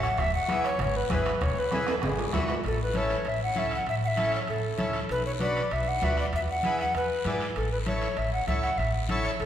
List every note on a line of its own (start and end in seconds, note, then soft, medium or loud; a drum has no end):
0.00 0.12 A1 medium
0.00 0.21 F#5 loud
0.00 bombo rim medium
0.00 high timbale medium
0.00 short guiro medium
0.17 0.30 E1 loud
0.17 0.34 E5 loud
0.17 bombo low medium
0.17 bombo rim medium
0.17 high conga soft
0.17 high timbale medium
0.17 long guiro medium
0.34 0.63 F#5 loud
0.48 0.70 B3 medium
0.48 0.70 E4 medium
0.48 0.70 G#4 medium
0.48 bombo rim medium
0.48 high conga medium
0.48 high timbale medium
0.48 short guiro medium
0.64 0.79 C#5 medium
0.64 bombo rim medium
0.64 high timbale medium
0.64 short guiro medium
0.78 1.03 G#1 medium
0.78 0.98 C#5 medium
0.78 bombo rim medium
0.78 high conga soft
0.78 low conga medium
0.78 high timbale medium
0.78 long guiro medium
0.96 1.11 B4 medium
1.09 1.35 G#1 medium
1.09 1.31 B3 medium
1.09 1.31 E4 medium
1.09 1.32 G#4 medium
1.09 1.16 C5 medium
1.09 bombo low medium
1.09 bombo rim medium
1.09 high conga medium
1.09 high timbale medium
1.09 short guiro medium
1.15 1.44 B4 medium
1.25 bombo rim medium
1.25 high timbale medium
1.25 short guiro medium
1.41 1.54 E1 loud
1.41 1.61 C#5 loud
1.41 bombo low medium
1.41 bombo rim medium
1.41 high conga soft
1.41 low conga medium
1.41 high timbale medium
1.41 long guiro medium
1.59 1.88 B4 medium
1.71 1.93 B3 medium
1.71 1.93 E4 medium
1.71 1.94 G#4 medium
1.71 bombo rim medium
1.71 high conga medium
1.71 high timbale loud
1.71 short guiro medium
1.87 1.95 B4 medium
1.87 bombo rim medium
1.87 high timbale loud
1.87 short guiro medium
2.02 2.27 G#1 medium
2.02 2.32 G#4 medium
2.02 bombo rim medium
2.02 high conga soft
2.02 low conga medium
2.02 high timbale loud
2.02 long guiro medium
2.19 low timbale loud
2.33 2.58 G#1 medium
2.33 2.54 B3 medium
2.33 2.55 E4 medium
2.33 2.55 F#4 medium
2.33 bombo low medium
2.33 bombo rim medium
2.33 high conga medium
2.33 low timbale medium
2.33 short guiro medium
2.48 bombo rim medium
2.48 low timbale medium
2.48 short guiro medium
2.64 3.14 A1 medium
2.64 2.80 A4 medium
2.64 high conga soft
2.64 high timbale medium
2.64 long guiro medium
2.83 2.99 B4 medium
2.94 3.16 C#4 medium
2.94 3.17 E4 medium
2.94 3.17 A4 medium
2.94 3.30 C#5 medium
2.94 high conga medium
2.94 high timbale medium
2.94 short guiro medium
3.10 high timbale medium
3.10 short guiro medium
3.25 3.50 A1 medium
3.25 3.42 E5 loud
3.25 high conga soft
3.25 high timbale medium
3.25 long guiro medium
3.43 3.60 F#5 medium
3.55 3.81 C#2 medium
3.55 3.77 C#4 medium
3.55 3.77 E4 medium
3.55 3.77 A4 medium
3.55 3.73 E5 medium
3.55 high conga medium
3.55 high timbale medium
3.55 short guiro medium
3.71 3.88 F#5 medium
3.71 high timbale medium
3.71 short guiro medium
3.86 4.36 A1 medium
3.86 3.95 E5 loud
3.86 high conga soft
3.86 high timbale medium
3.86 long guiro medium
4.04 4.32 E5 medium
4.04 4.09 F#5 medium
4.16 4.39 C#4 medium
4.16 4.39 E4 medium
4.16 4.39 A4 medium
4.16 high conga medium
4.16 high timbale medium
4.16 short guiro medium
4.32 4.41 C#5 medium
4.32 high timbale medium
4.32 short guiro medium
4.47 4.73 A1 medium
4.47 4.92 A4 medium
4.47 high conga soft
4.47 high timbale medium
4.47 long guiro medium
4.78 5.04 C#2 medium
4.78 5.00 C#4 medium
4.78 5.00 E4 medium
4.78 5.00 A4 medium
4.78 high conga medium
4.78 high timbale medium
4.78 short guiro medium
4.93 high timbale medium
4.93 short guiro medium
5.09 5.59 B1 medium
5.09 5.25 B4 medium
5.09 high conga soft
5.09 high timbale medium
5.09 long guiro medium
5.26 5.32 C#5 medium
5.39 5.62 D4 medium
5.39 5.62 F#4 medium
5.39 5.62 B4 medium
5.39 5.74 D5 medium
5.39 high conga medium
5.39 high timbale medium
5.39 short guiro medium
5.56 high timbale medium
5.56 short guiro medium
5.71 5.96 B1 medium
5.71 5.90 E5 medium
5.71 high conga soft
5.71 high timbale medium
5.71 long guiro medium
5.88 6.06 F#5 medium
6.02 6.27 D2 medium
6.02 6.24 D4 medium
6.02 6.24 F#4 medium
6.02 6.24 B4 medium
6.02 6.18 E5 medium
6.02 high conga medium
6.02 high timbale medium
6.02 low timbale medium
6.02 short guiro medium
6.17 6.26 D5 medium
6.17 high timbale medium
6.17 short guiro medium
6.33 6.82 E2 medium
6.33 6.41 E5 medium
6.33 high conga soft
6.33 high timbale medium
6.33 long guiro medium
6.51 6.78 F#5 medium
6.63 6.85 E4 medium
6.63 6.86 G#4 medium
6.63 6.86 B4 medium
6.63 high conga medium
6.63 high timbale medium
6.63 short guiro medium
6.79 6.94 F#5 loud
6.79 high timbale medium
6.79 short guiro medium
6.94 7.19 E2 medium
6.94 7.38 B4 medium
6.94 high conga soft
6.94 high timbale medium
6.94 long guiro medium
7.25 7.50 G#2 medium
7.25 7.47 E4 medium
7.25 7.47 G#4 medium
7.25 7.47 D5 medium
7.25 high conga medium
7.25 high timbale medium
7.25 low timbale medium
7.25 short guiro medium
7.40 high timbale medium
7.40 short guiro medium
7.56 8.05 A1 medium
7.56 7.71 A4 medium
7.56 high conga soft
7.56 high timbale medium
7.56 long guiro medium
7.72 7.78 B4 medium
7.86 8.08 E4 medium
7.86 8.08 A4 medium
7.86 8.08 C#5 medium
7.86 8.20 C#5 medium
7.86 high conga medium
7.86 high timbale medium
7.86 short guiro medium
8.02 high timbale medium
8.02 short guiro medium
8.17 8.42 A1 medium
8.17 8.33 E5 medium
8.17 high conga soft
8.17 high timbale medium
8.17 long guiro medium
8.33 8.47 F#5 medium
8.47 8.72 C#2 medium
8.47 8.69 E4 medium
8.47 8.69 A4 medium
8.47 8.70 C#5 medium
8.47 8.54 E5 medium
8.47 high conga medium
8.47 high timbale medium
8.47 short guiro medium
8.63 8.79 F#5 medium
8.63 high timbale medium
8.63 short guiro medium
8.78 9.27 A1 medium
8.78 8.94 E5 medium
8.78 high conga soft
8.78 high timbale medium
8.78 long guiro medium
9.08 9.31 E4 medium
9.08 9.31 A4 medium
9.08 9.31 C#5 medium
9.08 high conga medium
9.08 high timbale medium
9.08 short guiro medium
9.23 9.30 C#5 medium
9.23 high timbale medium
9.23 short guiro medium
9.40 9.46 A1 medium
9.40 9.46 A4 medium
9.40 high conga soft
9.40 high timbale medium
9.40 long guiro medium